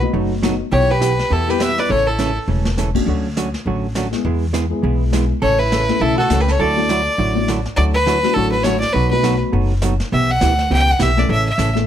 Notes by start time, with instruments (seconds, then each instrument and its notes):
0.01 upright piano A3 B3 D#4 F#4
0.13 upright bass F#1, hollow-body jazz guitar B2 F#3 A3 D#4 F#4, brush sweep
0.43 hollow-body jazz guitar B2 F#3 A3 D#4 F#4, upright piano A3 B3 D#4 F#4, snare, hi-hat pedal
0.72 upright bass B1, hollow-body jazz guitar B2 E3 B3 E4 G4, fiddle C#5, brush sweep
0.91 hollow-body jazz guitar G4, fiddle B4
1.00 hollow-body jazz guitar B2 E3 B3 E4 G4, snare, hi-hat pedal
1.19 snare
1.30 upright bass E2, hollow-body jazz guitar B2 E3 B3 E4 G4, fiddle A4, brush sweep
1.47 upright piano G3 B3 E4 G4, hollow-body jazz guitar G4, fiddle B4
1.59 hollow-body jazz guitar B2 E3 B3 E4 G4 B4, fiddle E5, snare, hi-hat pedal
1.78 hollow-body jazz guitar B4, fiddle D5, snare
1.89 upright bass A1, hollow-body jazz guitar C#3 E3 A3 C#4 A4, fiddle C#5, brush sweep
2.07 hollow-body jazz guitar E4, fiddle A4
2.19 hollow-body jazz guitar C#3 E3 A3 C#4 A4, snare, hi-hat pedal
2.48 upright bass E1, hollow-body jazz guitar C#3 E3 A3 C#4 A4
2.65 snare
2.78 hollow-body jazz guitar C#3 E3 A3 C#4 A4, snare, hi-hat pedal
2.94 upright piano A3 C#4 D4 F#4, kick, crash
3.06 upright bass D2, hollow-body jazz guitar D3 F#3 A3 C#4 F#4, brush sweep
3.37 hollow-body jazz guitar D3 F#3 A3 C#4 F#4, snare, hi-hat pedal
3.54 snare
3.66 upright bass A1, hollow-body jazz guitar D3 F#3 A3 C#4 F#4, brush sweep
3.95 hollow-body jazz guitar D3 F#3 A3 C#4 F#4, snare, hi-hat pedal
4.11 upright piano G#3 B3 E4 G#4, snare
4.25 upright bass E2, hollow-body jazz guitar E3 G#3 B3 E4 G#4, brush sweep
4.53 hollow-body jazz guitar E3 G#3 B3 E4 G#4, snare, hi-hat pedal
4.70 upright piano G#3 B3 E4 G#4
4.82 upright bass B1, hollow-body jazz guitar E3 G#3 B3 E4 G#4, brush sweep
5.12 hollow-body jazz guitar E3 G#3 B3 E4 G#4, upright piano G#3 B3 E4 G#4, snare, hi-hat pedal
5.42 upright bass A1, hollow-body jazz guitar C#3 E3 A3 C#4 A4, fiddle C#5, brush sweep
5.59 hollow-body jazz guitar E4, fiddle B4
5.72 hollow-body jazz guitar C#3 E3 A3 C#4 A4, snare, hi-hat pedal
5.89 upright piano A3 C#4 E4 A4, snare
6.00 upright bass B1, hollow-body jazz guitar C#3 E3 A3 C#4 E4 A4, fiddle A4, brush sweep
6.18 hollow-body jazz guitar F#4, fiddle A4
6.30 upright bass C#2, hollow-body jazz guitar C#3 E3 A3 C#4 A4, upright piano A3 C#4 E4 A4, snare, hi-hat pedal
6.40 hollow-body jazz guitar G4, fiddle B4
6.48 hollow-body jazz guitar A4, fiddle C#5, snare
6.59 upright bass D2, hollow-body jazz guitar D3 F#3 A3 E4 F#4 A4, fiddle D5, brush sweep
6.76 upright piano A3 D4 E4 F#4
6.89 hollow-body jazz guitar D3 F#3 A3 E4 F#4, snare, hi-hat pedal
7.18 upright bass A1, hollow-body jazz guitar D3 F#3 A3 E4 F#4, brush sweep
7.35 upright piano A3 D4 E4 F#4
7.48 hollow-body jazz guitar D3 F#3 A3 E4 F#4, snare, hi-hat pedal
7.65 snare
7.76 upright bass D2, hollow-body jazz guitar D3 F#3 A3 E4 F#4, fiddle D5, brush sweep
7.94 fiddle B4
8.06 hollow-body jazz guitar D3 F#3 A3 E4 F#4, snare, hi-hat pedal
8.23 upright piano F#3 A3 D4 E4 F#4, snare
8.34 upright bass A1, hollow-body jazz guitar D3 F#3 A3 E4 F#4, fiddle A4, brush sweep
8.51 fiddle B4
8.63 hollow-body jazz guitar D3 F#3 A3 E4 F#4, upright piano F#3 A3 D4 E4 F#4, fiddle C#5, snare, hi-hat pedal
8.80 fiddle D5, snare
8.93 upright bass B1, hollow-body jazz guitar B2 F#3 A3 D#4 F#4, fiddle B4, brush sweep
9.11 upright piano F#3 A3 B3 D#4 F#4, fiddle B4
9.23 hollow-body jazz guitar B2 F#3 A3 D#4 F#4, snare, hi-hat pedal
9.52 upright bass F#1, hollow-body jazz guitar B2 F#3 A3 D#4 F#4, brush sweep
9.82 hollow-body jazz guitar B2 F#3 A3 D#4 F#4, snare, hi-hat pedal
10.00 snare
10.12 upright bass B1, hollow-body jazz guitar B2 E3 B3 E4 G4, fiddle E5, brush sweep
10.31 fiddle F#5
10.41 upright bass D2, hollow-body jazz guitar B2 E3 B3 E4 G4, snare, hi-hat pedal
10.59 snare
10.70 upright bass C#2, hollow-body jazz guitar B2 E3 B3 E4 G4, fiddle G5, brush sweep
10.91 fiddle F#5
10.99 upright bass B1, hollow-body jazz guitar B2 E3 B3 E4 G4, fiddle E5, snare, hi-hat pedal
11.16 upright piano E3 A3 C#4 E4 A4, fiddle D5, snare
11.29 upright bass A1, hollow-body jazz guitar C#3 E3 A3 C#4 A4, fiddle E5, brush sweep
11.49 fiddle E5
11.58 upright bass A1, hollow-body jazz guitar C#3 E3 A3 C#4 A4, snare, hi-hat pedal
11.74 upright piano E3 A3 C#4 E4 A4, snare